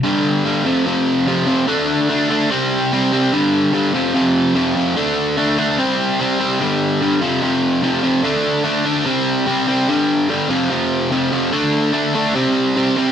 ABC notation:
X:1
M:4/4
L:1/8
Q:1/4=146
K:Fmix
V:1 name="Overdriven electric guitar" clef=bass
[G,,D,G,]2 [G,,D,G,] [F,,C,F,] [F,,C,F,]2 [F,,C,F,] [F,,C,F,] | [D,A,D]2 [D,A,D] [D,A,D] [C,G,C]2 [C,G,C] [C,G,C] | [G,,D,G,]2 [G,,D,G,] [F,,C,F,] [F,,C,F,]2 [F,,C,F,] [F,,C,F,] | [D,A,D]2 [D,A,D] [D,A,D] [C,G,C]2 [C,G,C] [C,G,C] |
[G,,D,G,]2 [G,,D,G,] [F,,C,F,] [F,,C,F,]2 [F,,C,F,] [F,,C,F,] | [D,A,D]2 [D,A,D] [D,A,D] [C,G,C]2 [C,G,C] [C,G,C] | [G,,D,G,]2 [G,,D,G,] [F,,C,F,] [F,,C,F,]2 [F,,C,F,] [F,,C,F,] | [D,A,D]2 [D,A,D] [D,A,D] [C,G,C]2 [C,G,C] [C,G,C] |]